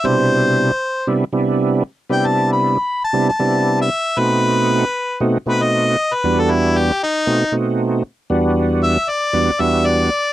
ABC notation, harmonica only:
X:1
M:4/4
L:1/16
Q:"Swing 16ths" 1/4=116
K:Em
V:1 name="Harmonica"
c8 z8 | g a2 b4 a2 a4 e3 | B8 z2 B ^d4 B- | B A E2 G2 ^D4 z6 |
z4 e2 d4 e2 d4 |]